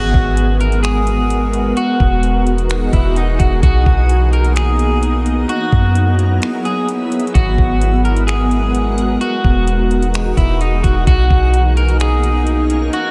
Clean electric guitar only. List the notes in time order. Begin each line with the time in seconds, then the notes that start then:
Already playing: F#4
0.61 A#4
0.83 G#4
1.77 F#4
2.93 E4
3.17 D#4
3.39 F#4
3.63 F#4
4.33 A#4
4.56 G#4
5.49 F#4
6.65 G#4
7.34 F#4
8.05 A#4
8.27 G#4
9.21 F#4
10.37 E4
10.61 D#4
10.83 F#4
11.07 F#4
11.77 A#4
12.01 G#4
12.93 F#4